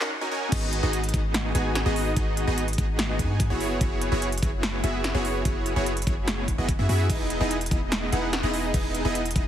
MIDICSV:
0, 0, Header, 1, 4, 480
1, 0, Start_track
1, 0, Tempo, 410959
1, 610, Time_signature, 4, 2, 24, 8
1, 11070, End_track
2, 0, Start_track
2, 0, Title_t, "Supersaw synth"
2, 0, Program_c, 0, 81
2, 9, Note_on_c, 0, 63, 91
2, 10, Note_on_c, 0, 61, 98
2, 10, Note_on_c, 0, 66, 91
2, 10, Note_on_c, 0, 70, 92
2, 10, Note_on_c, 0, 78, 107
2, 131, Note_off_c, 0, 61, 0
2, 131, Note_off_c, 0, 63, 0
2, 131, Note_off_c, 0, 66, 0
2, 131, Note_off_c, 0, 70, 0
2, 131, Note_off_c, 0, 78, 0
2, 250, Note_on_c, 0, 61, 89
2, 250, Note_on_c, 0, 63, 81
2, 250, Note_on_c, 0, 66, 85
2, 250, Note_on_c, 0, 70, 81
2, 250, Note_on_c, 0, 80, 99
2, 341, Note_off_c, 0, 61, 0
2, 341, Note_off_c, 0, 63, 0
2, 341, Note_off_c, 0, 66, 0
2, 341, Note_off_c, 0, 70, 0
2, 341, Note_off_c, 0, 80, 0
2, 368, Note_on_c, 0, 61, 101
2, 368, Note_on_c, 0, 63, 92
2, 368, Note_on_c, 0, 66, 94
2, 368, Note_on_c, 0, 80, 112
2, 369, Note_on_c, 0, 70, 93
2, 580, Note_off_c, 0, 61, 0
2, 580, Note_off_c, 0, 63, 0
2, 580, Note_off_c, 0, 66, 0
2, 580, Note_off_c, 0, 70, 0
2, 580, Note_off_c, 0, 80, 0
2, 609, Note_on_c, 0, 59, 93
2, 609, Note_on_c, 0, 63, 82
2, 609, Note_on_c, 0, 66, 81
2, 609, Note_on_c, 0, 68, 83
2, 609, Note_on_c, 0, 75, 101
2, 940, Note_off_c, 0, 59, 0
2, 941, Note_off_c, 0, 63, 0
2, 941, Note_off_c, 0, 66, 0
2, 941, Note_off_c, 0, 68, 0
2, 941, Note_off_c, 0, 75, 0
2, 969, Note_on_c, 0, 59, 87
2, 969, Note_on_c, 0, 63, 83
2, 969, Note_on_c, 0, 66, 81
2, 969, Note_on_c, 0, 68, 85
2, 969, Note_on_c, 0, 75, 101
2, 1163, Note_off_c, 0, 59, 0
2, 1163, Note_off_c, 0, 63, 0
2, 1163, Note_off_c, 0, 66, 0
2, 1163, Note_off_c, 0, 68, 0
2, 1163, Note_off_c, 0, 75, 0
2, 1328, Note_on_c, 0, 59, 83
2, 1328, Note_on_c, 0, 63, 76
2, 1328, Note_on_c, 0, 66, 75
2, 1328, Note_on_c, 0, 68, 74
2, 1328, Note_on_c, 0, 75, 88
2, 1780, Note_off_c, 0, 59, 0
2, 1780, Note_off_c, 0, 63, 0
2, 1780, Note_off_c, 0, 66, 0
2, 1780, Note_off_c, 0, 68, 0
2, 1780, Note_off_c, 0, 75, 0
2, 1809, Note_on_c, 0, 59, 77
2, 1809, Note_on_c, 0, 63, 69
2, 1809, Note_on_c, 0, 66, 70
2, 1809, Note_on_c, 0, 68, 70
2, 1809, Note_on_c, 0, 80, 85
2, 2140, Note_off_c, 0, 59, 0
2, 2140, Note_off_c, 0, 63, 0
2, 2140, Note_off_c, 0, 66, 0
2, 2141, Note_off_c, 0, 68, 0
2, 2141, Note_off_c, 0, 80, 0
2, 2169, Note_on_c, 0, 63, 86
2, 2169, Note_on_c, 0, 68, 85
2, 2170, Note_on_c, 0, 59, 89
2, 2170, Note_on_c, 0, 66, 82
2, 2170, Note_on_c, 0, 75, 103
2, 2501, Note_off_c, 0, 59, 0
2, 2501, Note_off_c, 0, 63, 0
2, 2501, Note_off_c, 0, 66, 0
2, 2501, Note_off_c, 0, 68, 0
2, 2501, Note_off_c, 0, 75, 0
2, 2530, Note_on_c, 0, 59, 93
2, 2530, Note_on_c, 0, 63, 85
2, 2530, Note_on_c, 0, 66, 85
2, 2530, Note_on_c, 0, 68, 80
2, 2530, Note_on_c, 0, 75, 99
2, 2861, Note_off_c, 0, 59, 0
2, 2861, Note_off_c, 0, 63, 0
2, 2861, Note_off_c, 0, 66, 0
2, 2861, Note_off_c, 0, 68, 0
2, 2861, Note_off_c, 0, 75, 0
2, 2890, Note_on_c, 0, 59, 90
2, 2890, Note_on_c, 0, 63, 81
2, 2890, Note_on_c, 0, 66, 82
2, 2890, Note_on_c, 0, 68, 79
2, 2890, Note_on_c, 0, 75, 101
2, 3084, Note_off_c, 0, 59, 0
2, 3084, Note_off_c, 0, 63, 0
2, 3084, Note_off_c, 0, 66, 0
2, 3084, Note_off_c, 0, 68, 0
2, 3084, Note_off_c, 0, 75, 0
2, 3249, Note_on_c, 0, 66, 74
2, 3250, Note_on_c, 0, 59, 81
2, 3250, Note_on_c, 0, 63, 74
2, 3250, Note_on_c, 0, 68, 72
2, 3250, Note_on_c, 0, 75, 89
2, 3701, Note_off_c, 0, 59, 0
2, 3701, Note_off_c, 0, 63, 0
2, 3701, Note_off_c, 0, 66, 0
2, 3701, Note_off_c, 0, 68, 0
2, 3701, Note_off_c, 0, 75, 0
2, 3730, Note_on_c, 0, 59, 77
2, 3730, Note_on_c, 0, 63, 70
2, 3730, Note_on_c, 0, 66, 69
2, 3730, Note_on_c, 0, 68, 67
2, 3730, Note_on_c, 0, 80, 84
2, 4061, Note_off_c, 0, 59, 0
2, 4061, Note_off_c, 0, 63, 0
2, 4061, Note_off_c, 0, 66, 0
2, 4061, Note_off_c, 0, 68, 0
2, 4061, Note_off_c, 0, 80, 0
2, 4090, Note_on_c, 0, 59, 90
2, 4090, Note_on_c, 0, 64, 83
2, 4090, Note_on_c, 0, 66, 82
2, 4090, Note_on_c, 0, 68, 84
2, 4090, Note_on_c, 0, 73, 98
2, 4421, Note_off_c, 0, 59, 0
2, 4421, Note_off_c, 0, 64, 0
2, 4421, Note_off_c, 0, 66, 0
2, 4421, Note_off_c, 0, 68, 0
2, 4421, Note_off_c, 0, 73, 0
2, 4450, Note_on_c, 0, 59, 91
2, 4450, Note_on_c, 0, 64, 84
2, 4450, Note_on_c, 0, 66, 84
2, 4450, Note_on_c, 0, 68, 83
2, 4450, Note_on_c, 0, 73, 103
2, 4781, Note_off_c, 0, 59, 0
2, 4781, Note_off_c, 0, 64, 0
2, 4781, Note_off_c, 0, 66, 0
2, 4781, Note_off_c, 0, 68, 0
2, 4781, Note_off_c, 0, 73, 0
2, 4809, Note_on_c, 0, 59, 86
2, 4809, Note_on_c, 0, 64, 80
2, 4809, Note_on_c, 0, 66, 82
2, 4810, Note_on_c, 0, 68, 80
2, 4810, Note_on_c, 0, 73, 98
2, 5003, Note_off_c, 0, 59, 0
2, 5003, Note_off_c, 0, 64, 0
2, 5003, Note_off_c, 0, 66, 0
2, 5004, Note_off_c, 0, 68, 0
2, 5004, Note_off_c, 0, 73, 0
2, 5170, Note_on_c, 0, 59, 81
2, 5170, Note_on_c, 0, 64, 76
2, 5170, Note_on_c, 0, 66, 73
2, 5170, Note_on_c, 0, 68, 73
2, 5170, Note_on_c, 0, 73, 90
2, 5621, Note_off_c, 0, 59, 0
2, 5621, Note_off_c, 0, 64, 0
2, 5621, Note_off_c, 0, 66, 0
2, 5621, Note_off_c, 0, 68, 0
2, 5621, Note_off_c, 0, 73, 0
2, 5649, Note_on_c, 0, 59, 75
2, 5649, Note_on_c, 0, 64, 68
2, 5649, Note_on_c, 0, 66, 71
2, 5649, Note_on_c, 0, 68, 69
2, 5649, Note_on_c, 0, 76, 82
2, 5981, Note_off_c, 0, 59, 0
2, 5981, Note_off_c, 0, 64, 0
2, 5981, Note_off_c, 0, 66, 0
2, 5981, Note_off_c, 0, 68, 0
2, 5981, Note_off_c, 0, 76, 0
2, 6010, Note_on_c, 0, 59, 93
2, 6010, Note_on_c, 0, 64, 81
2, 6010, Note_on_c, 0, 66, 84
2, 6010, Note_on_c, 0, 68, 84
2, 6010, Note_on_c, 0, 73, 99
2, 6341, Note_off_c, 0, 59, 0
2, 6341, Note_off_c, 0, 64, 0
2, 6341, Note_off_c, 0, 66, 0
2, 6341, Note_off_c, 0, 68, 0
2, 6341, Note_off_c, 0, 73, 0
2, 6370, Note_on_c, 0, 64, 85
2, 6370, Note_on_c, 0, 66, 82
2, 6370, Note_on_c, 0, 68, 80
2, 6370, Note_on_c, 0, 73, 102
2, 6701, Note_off_c, 0, 64, 0
2, 6701, Note_off_c, 0, 66, 0
2, 6701, Note_off_c, 0, 68, 0
2, 6701, Note_off_c, 0, 73, 0
2, 6730, Note_on_c, 0, 64, 82
2, 6730, Note_on_c, 0, 66, 81
2, 6730, Note_on_c, 0, 68, 83
2, 6730, Note_on_c, 0, 73, 100
2, 6731, Note_on_c, 0, 59, 91
2, 6924, Note_off_c, 0, 59, 0
2, 6924, Note_off_c, 0, 64, 0
2, 6924, Note_off_c, 0, 66, 0
2, 6924, Note_off_c, 0, 68, 0
2, 6924, Note_off_c, 0, 73, 0
2, 7090, Note_on_c, 0, 59, 82
2, 7090, Note_on_c, 0, 64, 76
2, 7090, Note_on_c, 0, 66, 73
2, 7090, Note_on_c, 0, 68, 75
2, 7090, Note_on_c, 0, 73, 89
2, 7541, Note_off_c, 0, 59, 0
2, 7541, Note_off_c, 0, 64, 0
2, 7541, Note_off_c, 0, 66, 0
2, 7541, Note_off_c, 0, 68, 0
2, 7541, Note_off_c, 0, 73, 0
2, 7689, Note_on_c, 0, 66, 90
2, 7689, Note_on_c, 0, 75, 108
2, 7690, Note_on_c, 0, 59, 99
2, 7690, Note_on_c, 0, 64, 90
2, 7690, Note_on_c, 0, 68, 91
2, 7811, Note_off_c, 0, 59, 0
2, 7811, Note_off_c, 0, 64, 0
2, 7811, Note_off_c, 0, 66, 0
2, 7811, Note_off_c, 0, 68, 0
2, 7811, Note_off_c, 0, 75, 0
2, 7930, Note_on_c, 0, 59, 90
2, 7930, Note_on_c, 0, 64, 80
2, 7930, Note_on_c, 0, 66, 83
2, 7930, Note_on_c, 0, 68, 81
2, 7930, Note_on_c, 0, 76, 97
2, 8021, Note_off_c, 0, 59, 0
2, 8021, Note_off_c, 0, 64, 0
2, 8021, Note_off_c, 0, 66, 0
2, 8021, Note_off_c, 0, 68, 0
2, 8021, Note_off_c, 0, 76, 0
2, 8050, Note_on_c, 0, 59, 101
2, 8050, Note_on_c, 0, 64, 94
2, 8050, Note_on_c, 0, 66, 94
2, 8050, Note_on_c, 0, 68, 93
2, 8050, Note_on_c, 0, 76, 108
2, 8261, Note_off_c, 0, 59, 0
2, 8261, Note_off_c, 0, 64, 0
2, 8261, Note_off_c, 0, 66, 0
2, 8261, Note_off_c, 0, 68, 0
2, 8261, Note_off_c, 0, 76, 0
2, 8290, Note_on_c, 0, 59, 92
2, 8290, Note_on_c, 0, 63, 85
2, 8290, Note_on_c, 0, 64, 86
2, 8290, Note_on_c, 0, 75, 99
2, 8621, Note_off_c, 0, 59, 0
2, 8621, Note_off_c, 0, 63, 0
2, 8621, Note_off_c, 0, 64, 0
2, 8621, Note_off_c, 0, 75, 0
2, 8650, Note_on_c, 0, 59, 90
2, 8650, Note_on_c, 0, 63, 82
2, 8650, Note_on_c, 0, 64, 83
2, 8650, Note_on_c, 0, 68, 83
2, 8650, Note_on_c, 0, 75, 97
2, 8844, Note_off_c, 0, 59, 0
2, 8844, Note_off_c, 0, 63, 0
2, 8844, Note_off_c, 0, 64, 0
2, 8844, Note_off_c, 0, 68, 0
2, 8844, Note_off_c, 0, 75, 0
2, 9009, Note_on_c, 0, 59, 84
2, 9009, Note_on_c, 0, 63, 74
2, 9009, Note_on_c, 0, 64, 75
2, 9009, Note_on_c, 0, 68, 73
2, 9009, Note_on_c, 0, 75, 90
2, 9460, Note_off_c, 0, 75, 0
2, 9461, Note_off_c, 0, 59, 0
2, 9461, Note_off_c, 0, 63, 0
2, 9461, Note_off_c, 0, 64, 0
2, 9461, Note_off_c, 0, 68, 0
2, 9489, Note_on_c, 0, 63, 70
2, 9489, Note_on_c, 0, 78, 86
2, 9490, Note_on_c, 0, 59, 74
2, 9490, Note_on_c, 0, 64, 70
2, 9490, Note_on_c, 0, 68, 71
2, 9821, Note_off_c, 0, 59, 0
2, 9821, Note_off_c, 0, 63, 0
2, 9821, Note_off_c, 0, 64, 0
2, 9821, Note_off_c, 0, 68, 0
2, 9821, Note_off_c, 0, 78, 0
2, 9849, Note_on_c, 0, 59, 92
2, 9849, Note_on_c, 0, 63, 86
2, 9849, Note_on_c, 0, 64, 82
2, 9849, Note_on_c, 0, 68, 82
2, 9849, Note_on_c, 0, 75, 98
2, 10180, Note_off_c, 0, 59, 0
2, 10180, Note_off_c, 0, 63, 0
2, 10180, Note_off_c, 0, 68, 0
2, 10180, Note_off_c, 0, 75, 0
2, 10181, Note_off_c, 0, 64, 0
2, 10208, Note_on_c, 0, 59, 91
2, 10208, Note_on_c, 0, 63, 84
2, 10209, Note_on_c, 0, 64, 84
2, 10209, Note_on_c, 0, 68, 84
2, 10209, Note_on_c, 0, 75, 100
2, 10540, Note_off_c, 0, 59, 0
2, 10540, Note_off_c, 0, 63, 0
2, 10540, Note_off_c, 0, 64, 0
2, 10540, Note_off_c, 0, 68, 0
2, 10540, Note_off_c, 0, 75, 0
2, 10569, Note_on_c, 0, 59, 90
2, 10569, Note_on_c, 0, 63, 79
2, 10569, Note_on_c, 0, 64, 81
2, 10569, Note_on_c, 0, 68, 82
2, 10569, Note_on_c, 0, 75, 95
2, 10763, Note_off_c, 0, 59, 0
2, 10763, Note_off_c, 0, 63, 0
2, 10763, Note_off_c, 0, 64, 0
2, 10763, Note_off_c, 0, 68, 0
2, 10763, Note_off_c, 0, 75, 0
2, 10929, Note_on_c, 0, 59, 83
2, 10929, Note_on_c, 0, 75, 93
2, 10930, Note_on_c, 0, 63, 77
2, 10930, Note_on_c, 0, 64, 75
2, 10930, Note_on_c, 0, 68, 74
2, 11070, Note_off_c, 0, 59, 0
2, 11070, Note_off_c, 0, 63, 0
2, 11070, Note_off_c, 0, 64, 0
2, 11070, Note_off_c, 0, 68, 0
2, 11070, Note_off_c, 0, 75, 0
2, 11070, End_track
3, 0, Start_track
3, 0, Title_t, "808-style bass"
3, 0, Program_c, 1, 38
3, 609, Note_on_c, 1, 32, 103
3, 945, Note_off_c, 1, 32, 0
3, 971, Note_on_c, 1, 32, 99
3, 1306, Note_off_c, 1, 32, 0
3, 1329, Note_on_c, 1, 32, 99
3, 1785, Note_off_c, 1, 32, 0
3, 1810, Note_on_c, 1, 32, 98
3, 2146, Note_off_c, 1, 32, 0
3, 2170, Note_on_c, 1, 32, 99
3, 2505, Note_off_c, 1, 32, 0
3, 2529, Note_on_c, 1, 32, 99
3, 2865, Note_off_c, 1, 32, 0
3, 2890, Note_on_c, 1, 32, 97
3, 3226, Note_off_c, 1, 32, 0
3, 3249, Note_on_c, 1, 32, 97
3, 3730, Note_on_c, 1, 44, 95
3, 3747, Note_off_c, 1, 32, 0
3, 4090, Note_on_c, 1, 30, 100
3, 4107, Note_off_c, 1, 44, 0
3, 4426, Note_off_c, 1, 30, 0
3, 4449, Note_on_c, 1, 30, 99
3, 4786, Note_off_c, 1, 30, 0
3, 4810, Note_on_c, 1, 30, 101
3, 5146, Note_off_c, 1, 30, 0
3, 5169, Note_on_c, 1, 30, 100
3, 5625, Note_off_c, 1, 30, 0
3, 5649, Note_on_c, 1, 30, 98
3, 5986, Note_off_c, 1, 30, 0
3, 6009, Note_on_c, 1, 30, 97
3, 6345, Note_off_c, 1, 30, 0
3, 6369, Note_on_c, 1, 30, 104
3, 6705, Note_off_c, 1, 30, 0
3, 6729, Note_on_c, 1, 30, 95
3, 7065, Note_off_c, 1, 30, 0
3, 7089, Note_on_c, 1, 30, 97
3, 7665, Note_off_c, 1, 30, 0
3, 7690, Note_on_c, 1, 30, 102
3, 7906, Note_off_c, 1, 30, 0
3, 7930, Note_on_c, 1, 42, 97
3, 8026, Note_off_c, 1, 42, 0
3, 8050, Note_on_c, 1, 42, 101
3, 8289, Note_on_c, 1, 28, 104
3, 8306, Note_off_c, 1, 42, 0
3, 8625, Note_off_c, 1, 28, 0
3, 8650, Note_on_c, 1, 28, 94
3, 8985, Note_off_c, 1, 28, 0
3, 9009, Note_on_c, 1, 28, 98
3, 9465, Note_off_c, 1, 28, 0
3, 9490, Note_on_c, 1, 28, 97
3, 9826, Note_off_c, 1, 28, 0
3, 9850, Note_on_c, 1, 28, 101
3, 10186, Note_off_c, 1, 28, 0
3, 10209, Note_on_c, 1, 28, 101
3, 10545, Note_off_c, 1, 28, 0
3, 10570, Note_on_c, 1, 28, 98
3, 10905, Note_off_c, 1, 28, 0
3, 10929, Note_on_c, 1, 28, 96
3, 11070, Note_off_c, 1, 28, 0
3, 11070, End_track
4, 0, Start_track
4, 0, Title_t, "Drums"
4, 9, Note_on_c, 9, 39, 101
4, 126, Note_off_c, 9, 39, 0
4, 609, Note_on_c, 9, 36, 121
4, 610, Note_on_c, 9, 42, 86
4, 610, Note_on_c, 9, 49, 108
4, 726, Note_off_c, 9, 36, 0
4, 726, Note_off_c, 9, 42, 0
4, 726, Note_off_c, 9, 49, 0
4, 849, Note_on_c, 9, 42, 71
4, 966, Note_off_c, 9, 42, 0
4, 1089, Note_on_c, 9, 42, 86
4, 1206, Note_off_c, 9, 42, 0
4, 1210, Note_on_c, 9, 42, 52
4, 1269, Note_off_c, 9, 42, 0
4, 1269, Note_on_c, 9, 42, 67
4, 1329, Note_off_c, 9, 42, 0
4, 1329, Note_on_c, 9, 36, 109
4, 1329, Note_on_c, 9, 42, 72
4, 1445, Note_off_c, 9, 36, 0
4, 1446, Note_off_c, 9, 42, 0
4, 1569, Note_on_c, 9, 38, 126
4, 1569, Note_on_c, 9, 42, 86
4, 1686, Note_off_c, 9, 38, 0
4, 1686, Note_off_c, 9, 42, 0
4, 1810, Note_on_c, 9, 42, 74
4, 1926, Note_off_c, 9, 42, 0
4, 2049, Note_on_c, 9, 40, 79
4, 2049, Note_on_c, 9, 42, 85
4, 2166, Note_off_c, 9, 40, 0
4, 2166, Note_off_c, 9, 42, 0
4, 2290, Note_on_c, 9, 46, 61
4, 2407, Note_off_c, 9, 46, 0
4, 2529, Note_on_c, 9, 36, 126
4, 2530, Note_on_c, 9, 42, 86
4, 2646, Note_off_c, 9, 36, 0
4, 2647, Note_off_c, 9, 42, 0
4, 2770, Note_on_c, 9, 42, 66
4, 2887, Note_off_c, 9, 42, 0
4, 3010, Note_on_c, 9, 42, 85
4, 3127, Note_off_c, 9, 42, 0
4, 3130, Note_on_c, 9, 42, 51
4, 3190, Note_off_c, 9, 42, 0
4, 3190, Note_on_c, 9, 42, 66
4, 3249, Note_on_c, 9, 36, 111
4, 3250, Note_off_c, 9, 42, 0
4, 3250, Note_on_c, 9, 42, 71
4, 3366, Note_off_c, 9, 36, 0
4, 3367, Note_off_c, 9, 42, 0
4, 3490, Note_on_c, 9, 38, 127
4, 3490, Note_on_c, 9, 42, 84
4, 3607, Note_off_c, 9, 38, 0
4, 3607, Note_off_c, 9, 42, 0
4, 3729, Note_on_c, 9, 36, 63
4, 3730, Note_on_c, 9, 42, 69
4, 3846, Note_off_c, 9, 36, 0
4, 3847, Note_off_c, 9, 42, 0
4, 3969, Note_on_c, 9, 36, 112
4, 3970, Note_on_c, 9, 42, 84
4, 4086, Note_off_c, 9, 36, 0
4, 4087, Note_off_c, 9, 42, 0
4, 4210, Note_on_c, 9, 46, 60
4, 4327, Note_off_c, 9, 46, 0
4, 4449, Note_on_c, 9, 36, 127
4, 4450, Note_on_c, 9, 42, 81
4, 4566, Note_off_c, 9, 36, 0
4, 4567, Note_off_c, 9, 42, 0
4, 4689, Note_on_c, 9, 42, 67
4, 4806, Note_off_c, 9, 42, 0
4, 4930, Note_on_c, 9, 42, 77
4, 5047, Note_off_c, 9, 42, 0
4, 5050, Note_on_c, 9, 42, 49
4, 5111, Note_off_c, 9, 42, 0
4, 5111, Note_on_c, 9, 42, 65
4, 5169, Note_on_c, 9, 36, 113
4, 5170, Note_off_c, 9, 42, 0
4, 5170, Note_on_c, 9, 42, 68
4, 5286, Note_off_c, 9, 36, 0
4, 5287, Note_off_c, 9, 42, 0
4, 5410, Note_on_c, 9, 38, 127
4, 5410, Note_on_c, 9, 42, 80
4, 5527, Note_off_c, 9, 38, 0
4, 5527, Note_off_c, 9, 42, 0
4, 5649, Note_on_c, 9, 42, 65
4, 5766, Note_off_c, 9, 42, 0
4, 5889, Note_on_c, 9, 40, 82
4, 5889, Note_on_c, 9, 42, 81
4, 6006, Note_off_c, 9, 40, 0
4, 6006, Note_off_c, 9, 42, 0
4, 6129, Note_on_c, 9, 46, 61
4, 6246, Note_off_c, 9, 46, 0
4, 6369, Note_on_c, 9, 36, 124
4, 6369, Note_on_c, 9, 42, 77
4, 6486, Note_off_c, 9, 36, 0
4, 6486, Note_off_c, 9, 42, 0
4, 6609, Note_on_c, 9, 42, 64
4, 6726, Note_off_c, 9, 42, 0
4, 6850, Note_on_c, 9, 42, 80
4, 6966, Note_off_c, 9, 42, 0
4, 6970, Note_on_c, 9, 42, 48
4, 7030, Note_off_c, 9, 42, 0
4, 7030, Note_on_c, 9, 42, 63
4, 7089, Note_on_c, 9, 36, 110
4, 7090, Note_off_c, 9, 42, 0
4, 7090, Note_on_c, 9, 42, 65
4, 7206, Note_off_c, 9, 36, 0
4, 7207, Note_off_c, 9, 42, 0
4, 7330, Note_on_c, 9, 38, 127
4, 7330, Note_on_c, 9, 42, 80
4, 7447, Note_off_c, 9, 38, 0
4, 7447, Note_off_c, 9, 42, 0
4, 7569, Note_on_c, 9, 36, 64
4, 7570, Note_on_c, 9, 42, 63
4, 7685, Note_off_c, 9, 36, 0
4, 7687, Note_off_c, 9, 42, 0
4, 7809, Note_on_c, 9, 36, 111
4, 7810, Note_on_c, 9, 42, 78
4, 7925, Note_off_c, 9, 36, 0
4, 7927, Note_off_c, 9, 42, 0
4, 8050, Note_on_c, 9, 46, 59
4, 8167, Note_off_c, 9, 46, 0
4, 8289, Note_on_c, 9, 36, 121
4, 8290, Note_on_c, 9, 42, 79
4, 8290, Note_on_c, 9, 57, 52
4, 8405, Note_off_c, 9, 36, 0
4, 8407, Note_off_c, 9, 42, 0
4, 8407, Note_off_c, 9, 57, 0
4, 8529, Note_on_c, 9, 42, 66
4, 8646, Note_off_c, 9, 42, 0
4, 8769, Note_on_c, 9, 42, 76
4, 8886, Note_off_c, 9, 42, 0
4, 8890, Note_on_c, 9, 42, 49
4, 8949, Note_off_c, 9, 42, 0
4, 8949, Note_on_c, 9, 42, 65
4, 9009, Note_off_c, 9, 42, 0
4, 9009, Note_on_c, 9, 36, 107
4, 9009, Note_on_c, 9, 42, 62
4, 9125, Note_off_c, 9, 36, 0
4, 9126, Note_off_c, 9, 42, 0
4, 9249, Note_on_c, 9, 38, 124
4, 9249, Note_on_c, 9, 42, 79
4, 9366, Note_off_c, 9, 38, 0
4, 9366, Note_off_c, 9, 42, 0
4, 9490, Note_on_c, 9, 42, 65
4, 9606, Note_off_c, 9, 42, 0
4, 9730, Note_on_c, 9, 40, 87
4, 9730, Note_on_c, 9, 42, 79
4, 9846, Note_off_c, 9, 40, 0
4, 9846, Note_off_c, 9, 42, 0
4, 9969, Note_on_c, 9, 46, 63
4, 10086, Note_off_c, 9, 46, 0
4, 10209, Note_on_c, 9, 36, 114
4, 10209, Note_on_c, 9, 42, 80
4, 10209, Note_on_c, 9, 57, 48
4, 10326, Note_off_c, 9, 36, 0
4, 10326, Note_off_c, 9, 42, 0
4, 10326, Note_off_c, 9, 57, 0
4, 10449, Note_on_c, 9, 42, 67
4, 10566, Note_off_c, 9, 42, 0
4, 10689, Note_on_c, 9, 42, 80
4, 10806, Note_off_c, 9, 42, 0
4, 10810, Note_on_c, 9, 42, 49
4, 10870, Note_off_c, 9, 42, 0
4, 10870, Note_on_c, 9, 42, 66
4, 10929, Note_on_c, 9, 36, 104
4, 10930, Note_off_c, 9, 42, 0
4, 10930, Note_on_c, 9, 42, 67
4, 11046, Note_off_c, 9, 36, 0
4, 11047, Note_off_c, 9, 42, 0
4, 11070, End_track
0, 0, End_of_file